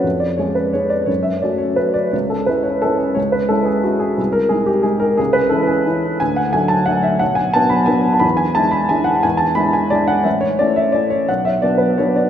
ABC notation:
X:1
M:3/4
L:1/16
Q:1/4=176
K:C#phr
V:1 name="Upright piano"
c2 d2 c2 B2 c2 d2 | c2 e2 d2 c2 B2 d2 | c2 A2 B2 c2 A2 G2 | c2 B2 A2 G2 F2 G2- |
G2 ^A2 G2 =G2 ^G2 A2 | G2 B2 A2 G2 z4 | g2 f2 g2 a2 f2 e2 | f2 g2 a2 b2 g3 a |
b2 g2 a2 b2 g2 f2 | g2 a2 b2 g2 d2 f2 | e2 c2 d2 e2 d2 c2 | f2 e2 d2 B2 c2 d2 |]
V:2 name="Upright piano"
^E,,4 [G,CG]4 [G,CG]4 | F,,4 [A,CF]4 [A,CF]4 | C,,4 [G,CE]4 [G,CE]4 | C,,4 [G,CE]4 [G,CE]4 |
^B,,,4 [G,^D]4 [G,D]4 | C,,4 [E,CE]4 [E,CE]4 | D,,4 [F,A,D]4 [F,A,D]4 | B,,,4 [F,B,D]4 [F,B,D]4 |
E,,4 [G,DE]4 [G,DE]4 | E,,4 [G,DE]4 [G,DE]4 | A,,,4 [A,CE]4 [A,CE]4 | B,,,4 [F,B,D]4 [F,B,D]4 |]